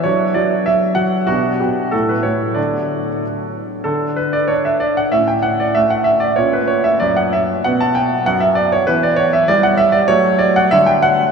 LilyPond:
<<
  \new Staff \with { instrumentName = "Grand piano" } { \time 2/4 \key d \major \tempo 4 = 96 << { cis''8 d''8 e''8 fis''8 | fis'8 g'8 a'16 b'16 cis''8 | d''4 r4 | a'8 b'16 d''16 cis''16 e''16 d''16 fis''16 |
e''16 g''16 fis''16 d''16 e''16 fis''16 e''16 d''16 | cis''16 b'16 cis''16 e''16 d''16 fis''16 e''8 | fis''16 a''16 g''8 fis''16 e''16 d''16 cis''16 | b'16 d''16 cis''16 e''16 d''16 fis''16 e''16 d''16 |
cis''8 d''16 fis''16 e''16 g''16 fis''8 | } \\ { <d' fis'>2 | <d' g'>4 e'4 | r2 | d'2 |
cis'2 | cis'2 | b2 | b2 |
a2 | } >> }
  \new Staff \with { instrumentName = "Grand piano" } { \clef bass \time 2/4 \key d \major fis8 fis8 fis8 fis8 | b,8 b,8 a,8 a,8 | <d d' a'>4 r4 | d4 d'4 |
a,4 a4 | ais,4 fis,4 | b,4 fis,4 | e4 g4 |
fis4 d4 | }
>>